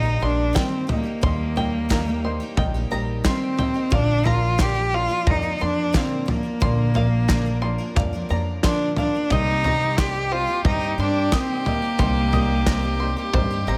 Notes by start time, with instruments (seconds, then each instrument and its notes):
Already playing: upright bass A#1, upright piano D#2 D#3 G3 A#3 D#4 A#4 D#5 F5, cello D#4, five-string banjo G5 A#5
0.03 twelve-string acoustic guitar A#3 D#4 G4
0.20 upright bass A#1, twelve-string acoustic guitar G3 A#3 G4, upright piano G3 A#3 D#4 A#4 D#5, cello D4, five-string banjo C6
0.53 twelve-string acoustic guitar D#3 G3 A#3 D#4 G4, upright piano G3 A#3, five-string banjo G5, kick, snare, clap
0.57 cello C4, upright piano D#4 A#4 C5
0.87 twelve-string acoustic guitar G3 A#3 D#4 G4, upright piano G3 A#3, floor tom
0.91 cello A#3, upright piano D#4 A#4 D#5
1.03 twelve-string acoustic guitar A#3 D#4 G4
1.21 upright bass D#2, upright piano D#2 D#3 G3 A#3 D#4 A#4 D#5, twelve-string acoustic guitar D#3 G3 A#3 D#4 G4, five-string banjo C6, kick, floor tom
1.56 twelve-string acoustic guitar G3 A#3 D#4 G4, upright piano G3 A#3 D#4 A#4 D#5, five-string banjo G5, floor tom
1.89 twelve-string acoustic guitar D#3 G3 A#3 D#4 G4, upright piano G3 A#3 D#4 A#4 F5, five-string banjo A#5, kick, snare, clap
2.06 twelve-string acoustic guitar A#3 D#4 G4
2.24 upright piano G3 A#3 D#4 A#4 C5, five-string banjo C6
2.40 twelve-string acoustic guitar A#3 D#4 G4
2.56 upright bass A#1, upright piano G3 A#3 D#4 A#4 D#5, five-string banjo G5, kick, floor tom
2.74 twelve-string acoustic guitar A#3 D#4 G4
2.90 upright bass A#1, upright piano G3 A#3 D#4 A#4 D#5, twelve-string acoustic guitar G3 A#3 D#4 G4, five-string banjo A#5
3.23 twelve-string acoustic guitar D#3 G3 A#3 D#4 G4, upright piano G3 A#3 D#4 A#4 D#5, cello C4, five-string banjo C6, kick, snare, clap
3.56 upright piano G3 A#3 D#4 A#4 C5, twelve-string acoustic guitar G3 A#3 D#4 G4, five-string banjo G5, floor tom
3.74 twelve-string acoustic guitar A#3 D#4 G4
3.90 upright bass A#1, upright piano A#1 A#2 F3 A#3 D4 A#4 D5, twelve-string acoustic guitar A#2 D3 F3 A#3 D4 A#4, five-string banjo F5, kick, floor tom
3.95 cello D4
4.24 twelve-string acoustic guitar F3 A#3 D4 A#4, upright piano F3 A#3 D4 A#4 D5, cello F4, five-string banjo A#5, floor tom
4.58 twelve-string acoustic guitar A#2 D3 F3 A#3 D4 A#4, upright piano F3 A#3 D4 A#4 D5, cello G4, five-string banjo C6, kick, snare, clap
4.74 twelve-string acoustic guitar F3 A#3 D4 A#4
4.93 upright piano F3 A#3 D4 A#4 D5, cello F4, five-string banjo F5
5.08 twelve-string acoustic guitar F3 A#3 D4 A#4
5.27 upright bass F2, upright piano F3 A#3 D4 A#4 D5, cello D#4, five-string banjo A#5, kick, floor tom
5.42 twelve-string acoustic guitar F3 A#3 D4 A#4
5.58 upright bass F2, twelve-string acoustic guitar F3 A#3 D4 A#4, upright piano F3 A#3 D4 A#4 D5, five-string banjo C6
5.63 cello D4
5.93 twelve-string acoustic guitar A#2 D3 F3 A#3 D4 A#4, upright piano F3 A#3 D4 A#4 D5, five-string banjo F5, kick, snare, clap
5.97 cello C4
6.26 twelve-string acoustic guitar F3 A#3 D4 A#4, upright piano F3 A#3 D4 A#4, floor tom
6.30 cello A#3, upright piano D5
6.43 twelve-string acoustic guitar F3 A#3 D4 A#4
6.60 upright bass A#1, upright piano A#1 A#2 F3 A#3 D4 A#4 D5, twelve-string acoustic guitar A#2 D3 F3 A#3 D4 A#4, five-string banjo C6, kick, floor tom
6.94 twelve-string acoustic guitar F3 A#3 D4 A#4, upright piano F3 A#3 D4 A#4 D5, five-string banjo F5, floor tom
7.28 twelve-string acoustic guitar A#2 D3 F3 A#3 D4 A#4, upright piano F3 A#3 D4 A#4 D5, five-string banjo A#5, kick, snare, clap
7.45 twelve-string acoustic guitar F3 A#3 D4 A#4
7.62 upright piano F3 A#3 D4 A#4 D5, five-string banjo C6
7.78 twelve-string acoustic guitar F3 A#3 D4 A#4
7.95 upright bass F2, upright piano F3 A#3 D4 A#4 D5, five-string banjo F5, kick, clap, floor tom
8.13 twelve-string acoustic guitar F3 A#3 D4 A#4
8.29 upright bass F2, twelve-string acoustic guitar F3 A#3 D4 A#4, upright piano F3 A#3 D4 A#4 D5, five-string banjo A#5
8.63 twelve-string acoustic guitar A#2 D3 F3 A#3 D4 A#4, upright piano F3 A#3 D4 A#4 C5, cello D4, five-string banjo C6, kick, snare, clap
8.96 twelve-string acoustic guitar F3 A#3 D4 A#4, upright piano F3 A#3 D4 A#4 D5, cello D4, five-string banjo F5, floor tom
9.14 twelve-string acoustic guitar F3 A#3 D4 A#4
9.30 upright bass C2, upright piano C2 C3 G3 C4 D#4 A#4 C5, twelve-string acoustic guitar C3 G3 A#3 D#4 G4, cello D#4, fiddle G4, five-string banjo D#5, kick, floor tom
9.64 twelve-string acoustic guitar G3 A#3 D#4 G4, upright piano G3 C4 D#4 A#4 C5, five-string banjo A#5, floor tom
9.98 twelve-string acoustic guitar C3 G3 A#3 D#4 G4, upright piano G3 C4 D#4 A#4 D5, cello G4, five-string banjo C6, kick, snare, clap
10.15 twelve-string acoustic guitar A#3 D#4 G4
10.32 upright piano G3 C4 D#4 A#4 C5, cello F4, five-string banjo C5
10.47 twelve-string acoustic guitar A#3 D#4 G4
10.65 upright bass G2, upright piano G3 C4 D#4 A#4 C5, cello D#4, five-string banjo A#5, kick, floor tom
10.81 twelve-string acoustic guitar A#3 D#4 G4
10.98 upright bass G2, twelve-string acoustic guitar G3 A#3 G4, upright piano G3 C4 D#4 A#4 C5, cello D4, five-string banjo C6
11.32 twelve-string acoustic guitar C3 G3 A#3 D#4 G4, upright piano G3 C4 D#4 A#4 C5, cello C4, five-string banjo D#5, kick, snare, clap
11.65 twelve-string acoustic guitar G3 A#3 D#4 G4, upright piano G3 C4 D#4 A#4 D#5, cello A#3, floor tom
11.82 twelve-string acoustic guitar A#3 D#4 G4
11.98 upright bass C2, upright piano C2 C3 G3 C4 D#4 A#4 C5, twelve-string acoustic guitar C3 G3 A#3 D#4 G4, five-string banjo C6, kick, floor tom
12.32 twelve-string acoustic guitar G3 A#3 D#4 G4, upright piano G3 C4 D#4 A#4 C5, five-string banjo D#5, floor tom
12.66 twelve-string acoustic guitar C3 G3 A#3 D#4 G4, upright piano G3 C4 D#4 A#4 C5, five-string banjo A#5, kick, snare, clap
12.83 twelve-string acoustic guitar A#3 D#4 G4
13.00 upright piano G3 C4 D#4 A#4 C5, five-string banjo C6
13.17 twelve-string acoustic guitar A#3 D#4 G4
13.33 upright bass G2, upright piano G3 C4 D#4 A#4 C5, five-string banjo C5, kick, floor tom
13.51 twelve-string acoustic guitar A#3 D#4 G4
13.67 upright bass A1, twelve-string acoustic guitar G3 A#3 D#4 G4, upright piano G3 C4 D#4 A#4 C5, five-string banjo A#5